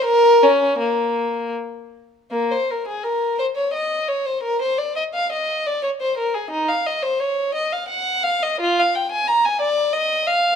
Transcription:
\new Staff \with { instrumentName = "Violin" } { \time 3/4 \key bes \minor \tempo 4 = 86 bes'8 des'8 bes4 r4 | bes16 c''16 bes'16 aes'16 bes'8 c''16 des''16 ees''8 des''16 c''16 | bes'16 c''16 d''16 ees''16 f''16 ees''8 d''16 des''16 c''16 bes'16 aes'16 | ees'16 f''16 ees''16 c''16 des''8 ees''16 f''16 ges''8 f''16 ees''16 |
f'16 f''16 g''16 aes''16 bes''16 aes''16 d''8 ees''8 f''8 | }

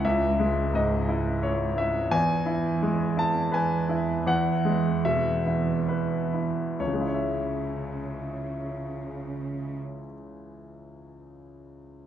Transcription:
<<
  \new Staff \with { instrumentName = "Grand piano" } { \time 3/4 \key cis \minor \tempo 4 = 72 << { e''4 dis''4 r8 e''8 | gis''4. a''8 gis''4 | fis''4 e''4 r4 | <cis, cis gis e' cis'' e''>2.~ |
<cis, cis gis e' cis'' e''>2. | } \\ { <cis, e'>8 gis8 gis,8 e'8 cis''8 e'8 | e,8 e'8 gis8 e'8 b'8 e'8 | e,8 gis8 b,8 e'8 b'8 e'8 | r2. |
r2. | } >> }
  \new Staff \with { instrumentName = "Cello section" } { \clef bass \time 3/4 \key cis \minor cis,2. | e,2.~ | e,2~ e,8 r8 | cis2.~ |
cis2. | }
>>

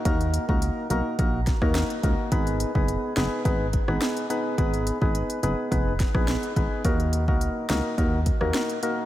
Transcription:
<<
  \new Staff \with { instrumentName = "Synth stab" } { \time 4/4 \key ees \minor \tempo 4 = 106 <bes ees' ges' bes'>8. <bes ees' ges' bes'>8. <bes ees' ges' bes'>8 <bes ees' ges' bes'>8 r16 <bes ees' ges' bes'>8. <bes ees' ges' bes'>8 | <ces' ees' aes' ces''>8. <ces' ees' aes' ces''>8. <ces' ees' aes' ces''>8 <ces' ees' aes' ces''>8 r16 <ces' ees' aes' ces''>8. <ces' ees' aes' ces''>8 | <ces' ees' aes' ces''>8. <ces' ees' aes' ces''>8. <ces' ees' aes' ces''>8 <ces' ees' aes' ces''>8 r16 <ces' ees' aes' ces''>8. <ces' ees' aes' ces''>8 | <bes ees' ges' bes'>8. <bes ees' ges' bes'>8. <bes ees' ges' bes'>8 <bes ees' ges' bes'>8 r16 <bes ees' ges' bes'>8. <bes ees' ges' bes'>8 | }
  \new Staff \with { instrumentName = "FM bass" } { \clef bass \time 4/4 \key ees \minor ees,8. des,8 r16 ces,16 r16 bes,,8. ees,8 r16 des,16 r16 | aes,,8. ges,,8 r16 ges,,16 r16 aes,,8. aes,,16 r4 | aes,,8. aes,,8 r16 ges,,16 r16 f,,8. bes,,8 r16 aes,,16 r16 | ees,8. des,8 r16 des,16 r16 ees,8. ees,16 r4 | }
  \new DrumStaff \with { instrumentName = "Drums" } \drummode { \time 4/4 <hh bd>16 hh16 hh16 bd16 hh8 hh8 <hh bd>8 <hh bd sn>16 <bd ss>16 <hh sn>16 hh16 <hh bd>8 | <hh bd>16 hh16 hh16 bd16 hh8 <hh sn>8 <hh bd>8 <hh bd>16 ss16 <hh sn>16 hh16 hh8 | <hh bd>16 hh16 hh16 bd16 hh16 hh16 hh8 <hh bd>8 <hh bd sn>16 <bd ss>16 <hh sn>16 hh16 <hh bd>8 | <hh bd>16 hh16 hh16 bd16 hh8 <hh sn>8 <hh bd>8 <hh bd>16 ss16 <hh sn>16 hh16 hh8 | }
>>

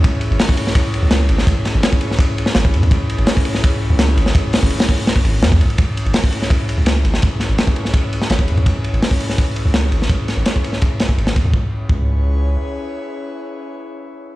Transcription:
<<
  \new Staff \with { instrumentName = "Analog synth pad" } { \time 4/4 \key cis \minor \tempo 4 = 167 <cis' e' gis' b' cis''>2~ <cis' e' gis' b' cis''>8. <cis' e' gis' b' cis''>4~ <cis' e' gis' b' cis''>16 | <cis' e' gis' b' cis''>2~ <cis' e' gis' b' cis''>8. <cis' e' gis' b' cis''>4~ <cis' e' gis' b' cis''>16 | <cis' e' gis' b' cis''>2~ <cis' e' gis' b' cis''>8. <cis' e' gis' b' cis''>4~ <cis' e' gis' b' cis''>16 | <cis' e' gis' b' cis''>2~ <cis' e' gis' b' cis''>8. r4 r16 |
<cis' e' gis' b' cis''>2~ <cis' e' gis' b' cis''>8. <cis' e' gis' b' cis''>4~ <cis' e' gis' b' cis''>16 | <cis' e' gis' b' cis''>2~ <cis' e' gis' b' cis''>8. <cis' e' gis' b' cis''>4~ <cis' e' gis' b' cis''>16 | <cis' e' gis' b' cis''>2~ <cis' e' gis' b' cis''>8. <cis' e' gis' b' cis''>4~ <cis' e' gis' b' cis''>16 | <cis' e' gis' b' cis''>2~ <cis' e' gis' b' cis''>8. r4 r16 |
<cis' e' gis' b' cis''>1~ | <cis' e' gis' b' cis''>1 | }
  \new Staff \with { instrumentName = "808-style bass" } { \clef bass \time 4/4 \key cis \minor cis,16 r8 gis,,16 r4. r16 cis,8. gis,,8 | cis,16 r8 gis,,16 r2 gis,,8 e,16 e,16 | cis,16 r8 gis,,16 r4. r16 cis,8. gis,,8 | cis,16 r8 gis,,16 r4. gis,,8 e,8 b,,16 r16 |
cis,16 r8 gis,,16 r4. r16 cis,8. gis,,8 | cis,16 r8 gis,,16 r2 gis,,8 e,16 e,16 | cis,16 r8 gis,,16 r4. r16 cis,8. gis,,8 | cis,16 r8 gis,,16 r2 gis,,8 e,16 e,16 |
cis,16 r8. cis,2 r4 | r1 | }
  \new DrumStaff \with { instrumentName = "Drums" } \drummode { \time 4/4 <bd cymr>8 cymr16 cymr16 <hho sn>16 bd16 cymr16 sn16 <bd cymr>8 cymr8 <cymr sn>8 cymr16 sn16 | <bd cymr>8 <cymr sn>8 <cymr sn>16 bd16 cymr16 sn16 <bd cymr>8 cymr16 sn16 <cymr sn>16 bd16 cymr16 cymr16 | <bd cymr>8 cymr16 cymr16 <hho sn>16 bd16 cymr16 sn16 <bd cymr>4 <cymr sn>8 cymr16 sn16 | <bd cymr>8 <hho sn>16 bd16 cymr16 <hho sn>16 bd16 cymr16 <hho sn>16 bd16 cymr8 <cymr sn>16 bd16 cymr16 cymr16 |
<bd cymr>8 cymr16 cymr16 <hho sn>16 bd16 cymr16 sn16 <bd cymr>8 cymr8 <cymr sn>8 cymr16 sn16 | <bd cymr>8 <cymr sn>8 <cymr sn>16 bd16 cymr16 sn16 <bd cymr>8 cymr16 sn16 <cymr sn>16 bd16 cymr16 cymr16 | <bd cymr>8 cymr16 cymr16 <hho sn>16 bd16 cymr16 sn16 <bd cymr>8 cymr8 <cymr sn>8 cymr16 sn16 | <bd cymr>8 <cymr sn>8 <cymr sn>16 bd16 cymr16 sn16 <bd cymr>8 <cymr sn>16 bd16 cymr16 <cymr sn>16 <bd cymr>8 |
bd4 bd4 r4 r4 | r4 r4 r4 r4 | }
>>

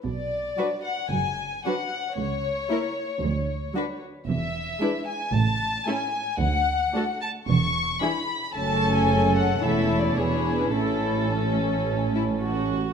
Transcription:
<<
  \new Staff \with { instrumentName = "Violin section" } { \time 4/4 \key a \major \tempo 4 = 112 d''4. fis''8 gis''4 fis''4 | cis''2.~ cis''8 r8 | e''4. gis''8 a''4 gis''4 | fis''4. a''8 cis'''4 b''4 |
a''8. gis''8. fis''8 \tuplet 3/2 { e''4 d''8 cis''4 b'8 } | a'2.~ a'8 r8 | }
  \new Staff \with { instrumentName = "Violin section" } { \time 4/4 \key a \major r4 <fis' b'>4 r4 <fis' b'>4 | r4 <e' ais'>4 r4 <fis' b'>4 | r4 <e' b'>4 r4 <e' a'>4 | r4 <fis' a'>4 r4 <e' gis'>4 |
<cis' a'>2 <e' a'>4 <e' gis'>4 | <e' a'>4 cis'4. e'8 fis'4 | }
  \new Staff \with { instrumentName = "Viola section" } { \time 4/4 \key a \major r4 <fis d'>4 r4 <fis d'>4 | r4 <ais e'>4 r4 <fis d'>4 | r4 <gis d'>4 r4 <a cis'>4 | r4 <a d'>4 r4 <e d'>4 |
<a cis'>2 <a cis'>4 <b d'>4 | cis'2.~ cis'8 r8 | }
  \new Staff \with { instrumentName = "Cello section" } { \clef bass \time 4/4 \key a \major b,4 r4 fis,4 r4 | cis,4 r4 d,4 r4 | e,4 r4 a,4 r4 | d,4 r4 e,4 r4 |
fis,2 e,4 e,4 | a,2.~ a,8 r8 | }
  \new Staff \with { instrumentName = "Double bass section" } { \clef bass \time 4/4 \key a \major b,,4 r4 fis,,4 r4 | cis,4 r4 d,4 r4 | e,,4 r4 a,,4 r4 | d,4 r4 e,,4 r4 |
fis,,2 e,,4 e,,4 | a,,2.~ a,,8 r8 | }
>>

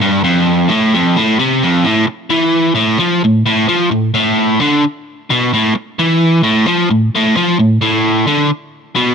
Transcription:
\new Staff \with { instrumentName = "Overdriven electric guitar" } { \clef bass \time 4/4 \key a \minor \tempo 4 = 131 g,8 f,4 a,8 f,8 a,8 c8 f,8 | a,8 r8 e4 a,8 f8 a,8 a,8 | f8 a,8 a,4 d8 r4 b,8 | a,8 r8 e4 a,8 f8 a,8 a,8 |
f8 a,8 a,4 d8 r4 b,8 | }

